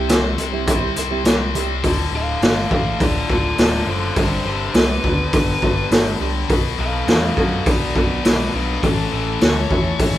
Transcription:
Already playing: C4 E4 G4 C5
0.08 C2 C3 G3 C4, snare, closed hi-hat
0.38 C2 C3 G3 C4, muted steel-string acoustic guitar stroke, closed hi-hat
0.52 C4 E4 G4 C5
0.67 C2 C3 G3 C4 E4 G4 C5, kick, closed hi-hat
0.81 C4 E4 G4 C5
0.96 C2 C3 G3 C4, closed hi-hat
1.11 C4 E4 G4 C5
1.25 C2 C3 G3 C4, muted steel-string acoustic guitar stroke, snare, closed hi-hat
1.39 muted steel-string acoustic guitar stroke
1.54 C2 C3 G3 C4 E4 G4 C5, closed hi-hat
1.84 D1 D2 A2 D3, kick, open hi-hat
2.12 D1 D2 A2 D3 A4
2.17 F5
2.41 G1 D2 A2 D3 A4 F5, snare, open hi-hat
2.71 A1 D2 A2 D3 A3 A4 F5, kick
3.00 D1 D2 A2 D3 F4 D5, kick, open hi-hat
3.29 D1 D2 A2 D3 F4 D5, kick
3.58 D1 D2 A2 D3 A3 F4 D5, snare, open hi-hat
3.87 F#1 D2 A2 D3 F4 A4 C5
4.16 G1 G2 D3 G3 G4 C5, kick, open hi-hat
4.46 G1 G2 D3 G3 G4 C5
4.74 C2 G2 D3 G3 B3 B4, snare, open hi-hat
5.04 D2 G2 D3 G3 D4, kick
5.33 G1 G2 D3 G3 B3, kick, open hi-hat
5.62 G1 G2 D3 G3, kick
5.91 G1 G2 D3 G3 D4, snare, open hi-hat
6.20 C2 G2 D3 G3 G4
6.49 B1 B2 F#3 B3, kick, open hi-hat
6.78 B1 B2 F#3 B3 A4 F5
7.07 E2 B2 F#3 B3 D4 A4 F5, snare, open hi-hat
7.36 F#2 B2 F#3 B3 F#4 A4 F5, kick
7.65 B1 B2 F#3 B3 D4 F#4 D5, kick, open hi-hat
7.94 B1 B2 F#3 B3 F#4 D5, kick
8.24 B1 B2 F#3 B3 F#4 D5, snare, open hi-hat
8.53 B1 B2 F#3 B3 D4 B4
8.82 A1 A2 E3 A3 C#4 A4, kick, open hi-hat
9.11 A1 A2 E3 A3 C#4 A4
9.41 D2 A2 E3 A3 C#4 C#5, snare, open hi-hat
9.70 E2 A2 E3 A3 E4, kick
9.99 A1 A2 E3 A3 C#4, kick, open hi-hat

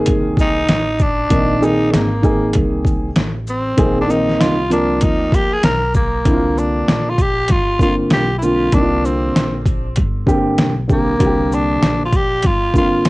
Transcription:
Already playing: D#3 A#3 C4 G#4
0.06 C2, kick, closed hi-hat
0.37 D#4, kick, shaker
0.68 A1, snare, closed hi-hat
0.99 D4, kick, shaker
1.30 A#1 D#3 A#3 C4 D#4, kick, closed hi-hat
1.61 D#3 A#3 C4 D#4 G#4, shaker
1.91 G#1 A3 A#3, snare, closed hi-hat
2.22 D#3 A#3 C4 G#4, kick, shaker
2.53 C2, kick, closed hi-hat
2.85 kick, shaker
3.16 A1, snare, closed hi-hat
3.47 C4, shaker
3.77 A#1 D#3 A#3 C4 G#4, kick, closed hi-hat
4.01 D4
4.07 D#3 A#3 C4 D#4, shaker
4.29 snare
4.40 C2 F4, snare, closed hi-hat
4.70 F3 A#3 C4 D4 A#4, closed hi-hat, shaker
5.01 D2 D#4, kick, closed hi-hat
5.32 G4, kick, closed hi-hat, shaker
5.53 G#4
5.63 B1 A#4, snare, closed hi-hat
5.94 A#3, kick, shaker
6.25 C2 D3 A#3 C4 E4, kick, closed hi-hat
6.33 F4
6.58 D4, shaker
6.88 A#1, snare, closed hi-hat
7.09 F4
7.18 G4, kick, closed hi-hat, shaker
7.48 G1 F4, kick, snare, closed hi-hat
7.79 D3 A#3 C4 F4, kick, shaker
8.10 B1 G4, snare, closed hi-hat
8.38 E4
8.42 D3 A#3 C4 F4, shaker
8.72 C2 D3 A#3 C4 D4 D#4, kick, closed hi-hat
8.81 F4
9.05 C4, shaker
9.35 A#1, snare, closed hi-hat
9.66 kick, closed hi-hat, shaker
9.96 G1, kick, closed hi-hat
10.26 D3 A#3 C4 G4, kick, shaker
10.58 B1, snare, closed hi-hat
10.88 D3 A#3 C4 G4, kick, shaker
10.92 A#3
11.18 C2 D3 A#3 C4 F#4, kick, closed hi-hat
11.26 G4
11.52 D4, shaker
11.82 A#1, snare, closed hi-hat
12.05 F4
12.13 G4, kick, closed hi-hat, shaker
12.43 G1 F4, kick, snare, closed hi-hat
12.74 D3 A#3 C4 F4, kick, shaker
13.05 B1, snare, closed hi-hat

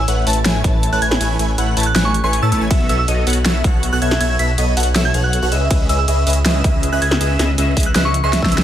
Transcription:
0.08 A1 A3 E4 B4 C#5 F#5, closed hi-hat
0.27 A1 A3 E4 B4 C#5 A5, closed hi-hat, open hi-hat
0.33 closed hi-hat
0.45 A1 A3 E4 B4 C#5 G#5, snare, closed hi-hat
0.64 A1 A3 E4 B4 C#5 A5, kick, closed hi-hat
0.83 closed hi-hat
0.92 A1 A3 E4 B4 C#5 A5 F#6
1.02 A1 A3 E4 B4 C#5 G#5 G#6, closed hi-hat
1.11 snare
1.21 A1 A3 E4 B4 C#5 G#5, closed hi-hat, ride
1.39 A1 A3 E4 B4 C#5 G#5, closed hi-hat
1.58 A1 A3 E4 B4 C#5 F#5, closed hi-hat
1.77 A1 A3 E4 B4 C#5 A5, closed hi-hat, open hi-hat
1.83 F#6, closed hi-hat
1.95 A1 A3 E4 B4 C#5 G#5 F#6, snare, closed hi-hat
2.05 C#6
2.14 closed hi-hat
2.24 A1 A3 E4 B4 C#5 G#5 C#6
2.33 closed hi-hat
2.42 A2 A3 E4 B4 C#5 A5 E6
2.52 A1 A3 E4 B4 C#5 A5 E6, closed hi-hat
2.61 A1 A3 E4 B4 C#5 G#5
2.71 B1 E5, kick, closed hi-hat, ride
2.89 B1 B3 F#4 A4 C#5 E5 E6, closed hi-hat
2.99 E6
3.08 B1 B3 F#4 A4 C#5 D#5, closed hi-hat
3.27 B1 B3 F#4 A4 C#5 F#5, closed hi-hat, open hi-hat
3.33 closed hi-hat
3.46 B1 B3 F#4 A4 C#5 E5, snare, closed hi-hat
3.64 B1 B3 F#4 A4 C#5 F#5, kick, closed hi-hat
3.83 closed hi-hat
3.93 B1 B3 F#4 A4 C#5 F#5 F#6
4.02 B1 B3 F#4 A4 C#5 E5 G#6, closed hi-hat
4.11 snare
4.21 B1 B3 F#4 A4 C#5 E5 G#6, closed hi-hat, ride
4.30 G#6
4.39 B1 B3 F#4 A4 C#5 E5 B6, closed hi-hat
4.58 B1 B3 F#4 A4 C#5 D#5, closed hi-hat
4.77 B1 B3 F#4 A4 C#5 F#5, closed hi-hat, open hi-hat
4.83 closed hi-hat
4.96 B1 B3 F#4 A4 C#5 E5, snare, closed hi-hat
5.05 G#6
5.14 B1 B3 F#4 A4 C#5 F#5, closed hi-hat
5.24 F#6
5.33 closed hi-hat
5.42 B1 B3 F#4 A4 C#5 F#5
5.52 C#2 C#4 G#4 B4 D#5 E5, closed hi-hat
5.71 C#2 C#4 G#4 B4 D#5 E5, kick, closed hi-hat, ride
5.89 C#2 C#4 G#4 B4 D#5 E5 E6, closed hi-hat
5.99 E6
6.08 C#2 C#4 G#4 B4 D#5 E5, closed hi-hat
6.27 C#2 C#4 G#4 B4 D#5 E5, closed hi-hat, open hi-hat
6.33 closed hi-hat
6.46 C#2 C#4 G#4 B4 D#5 E5, snare, closed hi-hat
6.64 C#2 C#4 G#4 B4 E5, kick, closed hi-hat
6.83 closed hi-hat
6.92 C#2 C#4 G#4 B4 D#5 E5 F#6
7.02 C#2 C#4 G#4 B4 D#5 E5 G#6, closed hi-hat
7.11 snare
7.21 C#2 C#4 G#4 B4 D#5 E5, closed hi-hat, ride
7.39 C#2 C#4 G#4 B4 D#5 E5, snare, closed hi-hat
7.58 C#2 C#4 G#4 B4 D#5 E5, closed hi-hat
7.77 C#2 C#4 G#4 B4 D#5 E5, kick, closed hi-hat, open hi-hat
7.83 F#6, closed hi-hat
7.96 C#2 C#4 G#4 B4 D#5 E5 F#6, snare, closed hi-hat
8.05 C#6
8.14 closed hi-hat
8.24 C#2 C#4 G#4 B4 D#5 E5 C#6
8.33 snare, closed hi-hat
8.42 C#2 C#4 G#4 B4 D#5 E5 E6, kick, snare
8.52 C#2 C#4 G#4 B4 D#5 E5 E6, closed hi-hat
8.58 snare

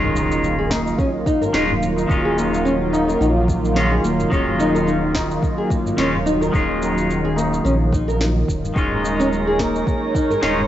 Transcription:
Already playing: D#1 D#3 G#3 C#4 D#4 F4 A#4 D#5, impact
0.03 tabla na, tabla ge
0.07 F#3 A#3
0.15 tabla na, shaker
0.31 F4, shaker
0.44 shaker
0.58 G#4
0.70 A#3, kick, snare, tabla na, shaker
0.86 tabla tin, shaker
0.98 C#4, kick, shaker
1.14 tabla tin
1.26 D#4, kick, tabla tin, shaker
1.41 A#4, tabla ge, shaker
1.53 D#1 D#3 G#3 C#4 D#4 F4, snare, shaker
1.70 tabla ge
1.83 shaker
1.96 tabla na, shaker
2.08 D#1 D#3 G#3 C#4 F4, kick, shaker
2.25 G#4, tabla na
2.36 A#3, tabla na, shaker
2.54 shaker
2.65 C#4, shaker
2.93 D#4, tabla na, shaker
3.08 A#4, tabla tin, shaker
3.20 A#1 D#4, shaker
3.48 kick, shaker
3.64 tabla na, shaker
3.76 D#3 G#3 C#4 F4, snare, shaker
3.91 G#4, tabla tin
4.04 D#1 A#3, shaker
4.19 tabla ge, shaker
4.30 D#1 D#3 G#3 C#4 F4, kick, shaker
4.47 tabla na, tabla ge
4.59 D#4, tabla na, shaker
4.75 A#4, shaker
4.87 D#4, shaker
5.15 kick, snare, tabla na, shaker
5.30 tabla tin, shaker
5.43 kick, shaker
5.58 G#4, tabla tin
5.70 A#3, kick, tabla tin, shaker
5.86 tabla ge, shaker
5.97 D#1 D#3 G#3 C#4 F4, snare, shaker
6.13 tabla ge
6.26 D#4, shaker
6.41 A#4, tabla na, shaker
6.52 D#1 D#3 G#3 C#4 D#4 F4, kick, shaker
6.69 tabla na
6.82 tabla na, shaker
6.98 shaker
7.10 shaker
7.25 G#4
7.36 A#3, tabla na, shaker
7.53 tabla tin, shaker
7.65 A#1 C#4, shaker
7.92 D#4, kick, shaker
8.08 A#4, tabla na, shaker
8.20 D#4, snare, shaker
8.36 tabla tin
8.48 D#1, kick, shaker
8.62 tabla ge, shaker
8.74 D#1 D#3 G#3 C#4 D#4 A#4, kick, shaker
8.78 F4
8.85 D#4
8.91 tabla na, tabla ge
9.01 A#4, tabla na
9.05 shaker
9.19 C#4, shaker
9.33 shaker
9.38 C#5
9.47 G#4
9.59 A#3, kick, snare, tabla na, shaker
9.75 tabla tin, shaker
9.87 kick, shaker
10.02 tabla tin
10.15 D#4, kick, tabla tin, shaker
10.30 A#4, tabla ge, shaker
10.42 D#1 D#3 G#3 C#4 D#4 F4, snare, shaker
10.58 tabla ge

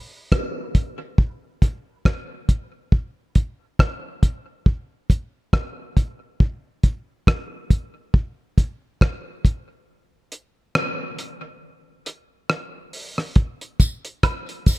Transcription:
0.32 kick, cross-stick, hi-hat pedal
0.75 kick, closed hi-hat
1.18 kick
1.62 kick, closed hi-hat
2.05 kick, cross-stick
2.49 kick, closed hi-hat
2.92 kick
3.35 kick, closed hi-hat
3.79 kick, cross-stick
4.23 kick, closed hi-hat
4.66 kick
5.10 kick, closed hi-hat
5.53 kick, cross-stick
5.97 kick, closed hi-hat
6.40 kick
6.83 kick, closed hi-hat
7.27 kick, cross-stick
7.70 kick, closed hi-hat
8.14 kick
8.58 kick, closed hi-hat
9.01 kick, cross-stick
9.45 kick, closed hi-hat
10.32 closed hi-hat
10.75 cross-stick
11.19 closed hi-hat
12.06 closed hi-hat
12.50 cross-stick
12.93 open hi-hat
13.18 cross-stick
13.36 kick, closed hi-hat
13.61 closed hi-hat
13.80 kick, closed hi-hat, tambourine
14.05 closed hi-hat
14.23 kick, cross-stick, closed hi-hat, high woodblock
14.49 closed hi-hat
14.66 kick, open hi-hat, tambourine

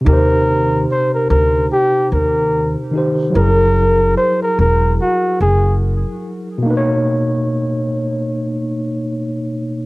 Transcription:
0.01 C3 D#4
0.06 D#2 G4 A#4
0.13 C5
0.91 C5
1.14 A#4
1.30 D2 A#4
1.72 G4
2.12 D#2 A#4
2.91 D#3 D#4
2.95 G4 C5
3.30 F#3 E4
3.35 F#1 G#4 A#4
3.42 A#4
4.17 C5
4.42 A#4
4.59 E1 A#4
5.02 F#4
5.40 F#1 G#4
6.58 B2
6.63 A#3 D#4
6.70 B4
6.77 C#5

